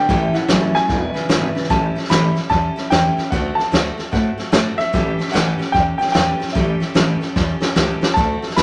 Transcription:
Already playing: G5
0.09 A1 A2 E3 G3 C#4 E4 A4, kick, snare
0.34 A2 E3 G3 C#4 E4 A4 F#5, muted upright bass stroke, snare
0.48 A1 A2 E3 F#3 G3 C#4 E4 A4, snare, hi-hat pedal
0.74 A2 F#3 G3 C#4 E4 A4 G#5, muted upright bass stroke, snare
0.88 E1 E2 B2 G#3 D4 E4 B4, kick, snare
1.14 E2 C#3 D4 E4 B4, muted upright bass stroke, snare
1.29 G#1 E2 C#3 E3 G#3 D4 E4 B4, snare, hi-hat pedal
1.55 E2 C#3 D4 E4 B4, muted upright bass stroke, snare
1.63 snare
1.70 A1 A2 E3 G3 C#4 E4 A4 A5, kick, snare
1.95 G3 C#4 E4 A4, muted upright bass stroke, snare
2.04 snare
2.09 A1 A2 E3 G3 C#4 E4 A4 B5, snare, hi-hat pedal
2.35 G3 C#4 E4 A4, muted upright bass stroke, snare
2.49 E2 G3 C#4 E4 A4 A5, kick, snare
2.76 G3 C#4 E4 A4, muted upright bass stroke, snare
2.90 E2 A2 E3 G3 C#4 E4 A4 G5, snare, hi-hat pedal
3.17 G3 C#4 E4 A4, muted upright bass stroke, snare
3.31 D2 D3 A3 C4 F#4 A4 F#5, kick, snare
3.55 A4 A5, muted upright bass stroke, snare
3.60 C4 F#4
3.71 D2 D3 A3 C4 F#4 A4, snare, hi-hat pedal
3.97 C4 F#4 A4, muted upright bass stroke, snare
4.11 A2 A3 C4 F#4 A4 F#5, kick, snare
4.38 C4 F#4 A4, muted upright bass stroke, snare
4.52 A2 D3 A3 C4 F#4 A4, snare, hi-hat pedal
4.78 C4 F#4 A4 E5, muted upright bass stroke, snare
4.93 A1 A2 E3 G3 C#4 G4 A4, kick, snare
5.18 G3 C#4 G4 A4, muted upright bass stroke, snare
5.28 snare
5.32 A1 A2 E3 G3 C#4 G4 A4 F#5, snare, hi-hat pedal
5.58 G3 C#4 G4 A4, muted upright bass stroke, snare
5.72 E2 G3 C#4 G4 A4 G5, kick, snare
5.98 G3 C#4 G4 A4 G5, muted upright bass stroke, snare
6.08 snare
6.12 E2 A2 E3 G3 C#4 G4 A4 G5, snare, hi-hat pedal
6.40 G3 C#4 G4 A4, muted upright bass stroke, snare
6.48 snare
6.52 A1 A2 E3 G3 C#4 G4 A4 E5, kick, snare
6.80 G3 C#4 G4 A4, muted upright bass stroke, snare
6.94 A1 A2 E3 G3 C#4 G4 A4, snare, hi-hat pedal
7.21 G3 C#4 G4 A4, snare
7.36 E2 G3 C#4 G4 A4, kick, snare
7.60 G3 C#4 G4 A4, muted upright bass stroke, snare
7.75 C#2 A2 E3 G3 C#4 G4 A4, snare, hi-hat pedal
8.01 G3 C#4 G4 A4, muted upright bass stroke, snare
8.14 D2 D3 A3 C4 F#4 A4 A5, kick, snare
8.42 C4 F#4 A4, snare
8.50 snare
8.56 D2 D3 A3 C4 F#4 A4 B5, snare, hi-hat pedal

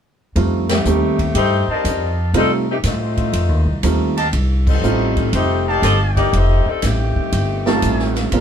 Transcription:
0.35 F2 G3 A3 C4 D#4 F4, kick, ride
0.69 D#3 A3 C4 G4, snare, ride
0.85 D#2 G3 A3 C4 D#4 G4, hi-hat pedal
1.19 kick, ride
1.35 G2 A3 D#4 G4 C5, kick, ride
1.68 G3 C4 D#4 G4 A#4 D#5 F5 A5, muted upright bass stroke
1.84 F2, kick, hi-hat pedal, ride
2.34 C3 G3 A3 C4 D#4 F4 A4, kick, ride
2.70 D#3 A3 C4 G4
2.84 A2 C4 D#4 F4, kick, snare, hi-hat pedal, ride
2.88 A3
3.17 kick, ride
3.33 F2, kick, ride
3.49 D#2
3.65 C2
3.83 D#2 G3 A3 C4 D#4 F4, kick, hi-hat pedal, ride
4.17 G4 D#5 F5 A5, ride
4.33 C2, kick, ride
4.67 G3 C4 D#4 A4, kick, crash
4.82 A1 G3 A3 C4 D#4 F4, hi-hat pedal
5.17 kick, ride
5.33 F1 A3 D#4 G4 C5, kick, ride
5.66 A#3 D#4 G4 D5 D#5 F5 A5
5.82 G1 C4 G4 A4 D#5, kick, snare, hi-hat pedal, ride
6.17 A#3 D#4 G4 D5, kick, ride
6.33 F1 A3 D#4 G4 C5, kick, ride
6.66 G3 C4 D#4 A4, muted upright bass stroke
6.82 A1 D#3 A3 C4 G4, kick, snare, hi-hat pedal, ride
7.16 muted upright bass stroke, kick
7.32 G1, kick, ride
7.65 G3 A3 C4 D#4 F4 G4 D#5 F5 A5, snare
7.82 A1, kick, hi-hat pedal, ride
7.99 snare
8.15 snare, ride
8.32 A#1 G#3 A#3 C4 D4 F4, kick, ride

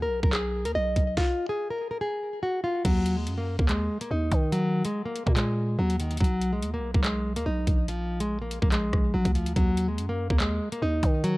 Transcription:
0.02 A#4
0.07 B1
0.23 B1 A#4, kick
0.33 G#4, clap, closed hi-hat
0.65 D#2 A#4, closed hi-hat
0.75 B1 D#5
0.96 B1, kick, closed hi-hat
1.17 F4, kick, snare
1.49 G#4
1.70 A#4
1.91 A#4
2.01 G#4
2.43 F#4
2.64 F4
2.85 D#2 F#3, kick, closed hi-hat, crash
3.06 closed hi-hat
3.17 G#3
3.27 F#2, closed hi-hat
3.38 A#3
3.59 D#2 A#3, kick
3.69 G#3, clap, closed hi-hat
4.01 A#3, closed hi-hat
4.11 D#2 D#4
4.32 D#3, kick, closed hi-hat
4.52 F#3, closed hi-hat
4.85 G#3, closed hi-hat
5.06 A#3
5.16 closed hi-hat
5.26 A#2 A#3, kick
5.36 G#3, clap, closed hi-hat
5.79 D#2 F#3
5.90 closed hi-hat
5.99 D#3, closed hi-hat
6.11 closed hi-hat
6.17 B1 F#3, kick, closed hi-hat
6.24 closed hi-hat
6.41 closed hi-hat
6.53 G#3
6.62 D#2, closed hi-hat
6.74 A#3
6.79 B1
6.94 B1 A#3, kick
7.04 G#3, clap, closed hi-hat
7.36 D#2 A#3, closed hi-hat
7.46 B1 D#4
7.67 A#1, kick, closed hi-hat
7.88 F3, closed hi-hat
8.20 G#3, closed hi-hat
8.42 A#3
8.51 closed hi-hat
8.62 A#1 A#3, kick
8.72 G#3, clap, closed hi-hat
8.93 A#1, kick, cross-stick
9.14 A#1 F#3
9.25 D2, kick, closed hi-hat
9.35 F3, closed hi-hat
9.46 closed hi-hat
9.56 D#2 F#3, kick, closed hi-hat
9.77 closed hi-hat
9.88 G#3
9.98 F#2, closed hi-hat
10.09 A#3
10.30 D#2 A#3, kick
10.40 G#3, clap, closed hi-hat
10.72 A#3, closed hi-hat
10.82 D#2 D#4
11.03 D#3, kick, closed hi-hat
11.24 F#3, closed hi-hat

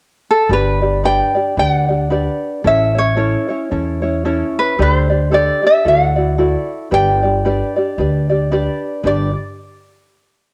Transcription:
0.30 A4
0.49 G1 D4 G4 B4 D5
0.82 D4 G4 D5
1.04 D4 G4 B4 D5 G5
1.35 D4 G4 D5
1.57 D2 D4 G4 B4 D5 G5
1.70 F#5
1.88 D4 G4 D5
2.10 D4 G4 B4 D5
2.64 A1 C#4 E4 A4 C#5 E5
2.95 C#4 E4 C#5
3.17 C#4 E4 A4 C#5
3.49 C#4 E4 C#5
3.71 E2 C#4 E4 A4 C#5
4.02 C#4 E4 C#5
4.25 C#4 E4 A4 C#5
4.59 B4
4.79 D2 D4 G4 A4 C5 D5
5.09 D4 G4 D5
5.31 D4 G4 A4 D5
5.62 D4 G4 D5
5.67 E5
5.85 D2 E4 F#4 A4 D5 F#5
6.16 E4 F#4 D5
6.38 E4 F#4 A4 D5
6.91 G1 D4 G4 B4 D5 G5
7.23 D4 G4 D5
7.45 D4 G4 B4 D5
7.76 D4 G4 D5
7.98 D2 D4 G4 B4 D5
8.29 D4 G4 D5
8.51 D4 G4 B4 D5
9.03 G1 D4 G4 B4 D5

